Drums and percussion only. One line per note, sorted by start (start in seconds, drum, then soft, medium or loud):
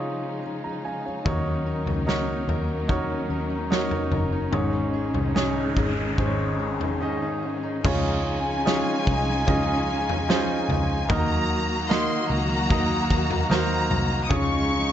1.26 kick medium
1.26 floor tom loud
1.87 floor tom medium
2.09 snare loud
2.49 floor tom medium
2.89 kick medium
2.89 floor tom medium
3.72 snare medium
3.91 floor tom medium
4.12 floor tom medium
4.53 floor tom medium
5.15 floor tom medium
5.36 snare medium
5.77 kick medium
5.77 floor tom medium
6.18 kick medium
6.18 floor tom medium
6.81 floor tom medium
7.85 kick loud
7.85 floor tom loud
7.85 crash medium
8.67 snare loud
9.07 kick medium
9.48 kick loud
9.48 floor tom medium
10.09 floor tom medium
10.30 snare loud
10.70 floor tom medium
11.10 kick loud
11.10 floor tom loud
11.91 snare loud
12.70 kick loud
12.70 floor tom medium
13.10 kick medium
13.31 floor tom medium
13.51 snare loud
13.91 floor tom medium
14.31 kick loud
14.31 floor tom loud